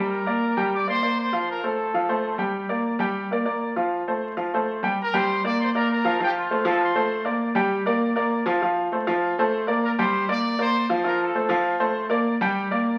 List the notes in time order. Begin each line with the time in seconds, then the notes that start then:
Already playing: G3 G4 A#4 G5
0.00 A#5
0.26 A#3 A#4 D5
0.57 G3 G4 G5
0.74 D5 D6
0.87 A#3 A#4 C5 D5 C6
1.02 A#3 A#4 D5
1.19 C5 C6
1.32 F3 F4 F5
1.49 A#4 A#5
1.63 A3 A4 C5 A5
1.94 F3 F4 F5
2.09 A3 A4 C5
2.38 G3 G4 G5
2.69 A#3 A#4 D5
2.99 G3 G4 G5
3.31 A#3 A#4 D5
3.45 A#3 A#4 D5
3.76 F3 F4 F5
4.08 A3 A4 C5
4.37 F3 F4 F5
4.54 A3 A4 C5
4.83 G3 G4 G5
5.00 A#4 A#5
5.14 G3 G4 C5 G5 C6
5.44 A#3 A#4 D5 D6
5.60 C5 C6
5.75 A#3 A#4 D5 A#5
5.90 A#4 A#5
6.05 F3 F4 F5
6.20 F3 F4 G4 F5 G5
6.37 F4 F5
6.51 A3 A4 C5
6.65 F3 F4 A4 F5 A5
6.81 C5 C6
6.95 A3 A4 C5
7.25 A#3 A#4 D5
7.55 G3 G4 G5
7.86 A#3 A#4 D5
8.16 A#3 A#4 D5
8.46 F3 F4 F5
8.62 F3 F4 F5
8.92 A3 A4 C5
9.07 F3 F4 F5
9.38 A3 A4 C5
9.67 A#3 A#4 D5
9.83 A#4 A#5
9.99 G3 G4 C5 G5 C6
10.28 A#3 A#4 D5 D6
10.59 A#3 A#4 C5 D5 C6
10.89 F3 F4 F5
11.04 F3 F4 A#4 F5 A#5
11.19 A4 A5
11.35 A3 A4 C5
11.49 F3 F4 F5
11.80 A3 A4 C5
12.09 A#3 A#4 D5
12.41 G3 G4 G5
12.71 A#3 A#4 D5